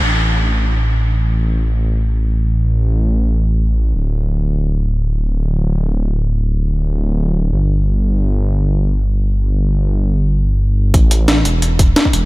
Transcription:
0.03 3.94 A1 medium
0.03 crash medium
3.95 7.52 D1 medium
7.53 10.92 G1 medium
10.94 11.44 A1 loud
10.94 kick loud
10.94 closed hi-hat medium
11.11 closed hi-hat medium
11.28 snare loud
11.28 closed hi-hat medium
11.45 11.95 E1 medium
11.45 closed hi-hat medium
11.62 closed hi-hat medium
11.79 kick loud
11.79 closed hi-hat loud
11.96 snare loud
11.96 closed hi-hat medium
12.05 kick medium
12.13 12.25 E1 loud
12.13 closed hi-hat loud

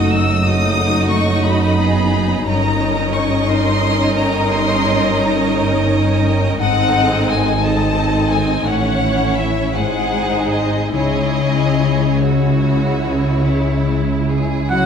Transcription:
0.00 2.43 F#1 medium
0.00 0.42 F#2 medium
0.00 2.43 F#2 medium
0.00 0.43 A3 soft
0.00 0.43 D#4 soft
0.00 0.76 D#4 soft
0.00 0.41 F#4 medium
0.00 1.43 F#4 soft
0.00 0.42 D#5 medium
0.00 0.11 D#6 medium
0.11 1.09 F#3 soft
0.11 0.45 E6 medium
0.43 2.49 F#2 soft
0.43 1.76 A3 medium
0.43 2.43 D#4 medium
0.43 1.76 F#4 medium
0.43 2.43 D#5 medium
0.43 1.12 D#6 medium
0.77 1.76 D#4 soft
1.11 2.10 F#3 soft
1.11 1.44 C#6 medium
1.44 2.49 F#4 soft
1.44 2.47 B5 medium
1.78 2.47 B3 medium
1.78 3.14 D#4 soft
1.78 2.46 G#4 soft
2.12 2.49 F#3 soft
2.46 6.57 G1 medium
2.46 4.49 G2 medium
2.46 6.57 G2 medium
2.46 6.57 C#4 medium
2.46 6.57 D#4 medium
2.46 6.58 A#4 medium
2.46 6.57 D#5 medium
2.46 3.14 A#5 medium
2.80 3.82 C#4 soft
3.15 5.19 D#4 soft
3.15 3.49 C#6 medium
3.49 5.55 A#4 soft
3.49 4.16 C6 medium
3.83 4.83 C#4 soft
4.16 6.25 G3 soft
4.16 4.49 A#5 medium
4.50 6.64 G2 soft
4.50 5.20 C6 medium
4.85 5.89 C#4 soft
5.19 7.29 D#4 soft
5.19 5.55 A#5 medium
5.56 6.64 A#4 soft
5.91 6.64 C#4 soft
6.26 6.64 G3 soft
6.60 8.62 G#1 medium
6.60 8.69 G#2 medium
6.60 8.62 G#2 medium
6.60 7.61 C4 medium
6.60 7.61 D#4 medium
6.60 7.60 A4 medium
6.60 7.60 D#5 medium
6.60 7.26 F#5 medium
6.95 7.96 C4 soft
7.30 8.69 D#4 soft
7.30 7.64 G#5 medium
7.64 8.64 C4 soft
7.64 8.64 D#4 soft
7.64 9.78 A4 soft
7.64 8.64 A4 medium
7.64 8.64 D#5 medium
7.64 8.31 A5 medium
7.98 8.69 C4 soft
8.31 8.69 D#3 soft
8.31 8.66 G#5 medium
8.66 9.73 A1 medium
8.66 9.78 A2 soft
8.66 9.72 A2 soft
8.66 9.75 C#4 medium
8.66 9.75 E4 medium
8.66 9.75 C#5 medium
8.66 9.38 F#5 medium
9.01 9.36 C#4 soft
9.37 9.78 C#4 soft
9.37 9.78 E4 soft
9.37 9.74 E5 medium
9.74 10.94 G#1 soft
9.74 10.97 G#2 soft
9.74 10.94 G#2 soft
9.74 10.93 G#3 medium
9.74 10.92 D#4 medium
9.74 10.93 G#4 soft
9.74 10.94 C5 soft
9.74 10.52 F#5 medium
10.12 10.97 C4 soft
10.51 10.96 D#4 soft
10.51 12.20 G#4 soft
10.51 10.93 D#5 medium
10.92 14.86 C#2 soft
10.92 14.82 C#3 soft
10.92 14.86 C#3 soft
10.92 12.20 G#3 soft
10.92 12.20 E4 soft
10.92 12.20 G#4 soft
10.92 12.20 C#5 soft
10.92 12.20 D#5 medium
11.35 12.62 C#4 soft
11.79 14.28 E4 soft
12.21 14.86 G#3 soft
12.21 14.86 E4 soft
12.21 13.44 F#4 medium
12.21 14.69 G#4 soft
12.21 14.70 C#5 medium
12.63 13.46 C#4 soft
13.05 13.87 G#3 soft
13.47 14.86 C#4 soft
13.47 14.30 E4 soft
13.89 14.86 G#3 soft
14.29 14.86 E4 soft
14.29 14.70 G#4 soft
14.69 14.86 F#3 medium
14.69 14.86 F#4 medium
14.69 14.86 G#4 soft
14.69 14.86 F#5 medium
14.69 14.86 F#5 soft

